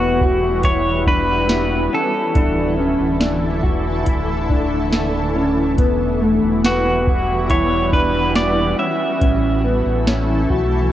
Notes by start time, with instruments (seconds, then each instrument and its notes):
Already playing: sub bass E1, ambient pad E3 G3 B3 E4 F#4, clean electric guitar B3, pedal steel guitar F#4
0.21 clean electric guitar F#4, kick
0.63 clean electric guitar E4, pedal steel guitar C#5, kick, closed hi-hat
1.07 clean electric guitar D4, pedal steel guitar B4, kick
1.49 snare, closed hi-hat
1.93 clean electric guitar C#4, pedal steel guitar A4
2.35 sub bass D1, ambient pad D3 A3 E4 A4, clean electric guitar D4, kick, closed hi-hat
2.78 clean electric guitar C#4
2.99 sub bass D1
3.20 clean electric guitar D4, snare, closed hi-hat
3.63 sub bass E1, clean electric guitar F#4, kick
4.06 sub bass D1, clean electric guitar E4, kick, closed hi-hat
4.50 clean electric guitar D4, kick
4.92 snare, closed hi-hat
5.36 clean electric guitar C#4
5.78 sub bass E1, ambient pad E3 G3 B3 E4 F#4, clean electric guitar B3, kick, closed hi-hat
6.21 clean electric guitar A3
6.43 sub bass E1
6.64 clean electric guitar B3, pedal steel guitar F#4, snare, closed hi-hat
7.07 clean electric guitar F#4, kick
7.50 clean electric guitar E4, pedal steel guitar C#5, kick, closed hi-hat
7.93 clean electric guitar D4, pedal steel guitar B4, kick
8.35 pedal steel guitar D5, snare, closed hi-hat
8.79 clean electric guitar C#4, pedal steel guitar E5
9.20 sub bass A1, ambient pad E3 A3 E4 A4, clean electric guitar C#4, kick, closed hi-hat
9.64 clean electric guitar B3
9.86 sub bass A1
10.07 clean electric guitar C#4, snare, closed hi-hat
10.50 sub bass B1, clean electric guitar F#4, kick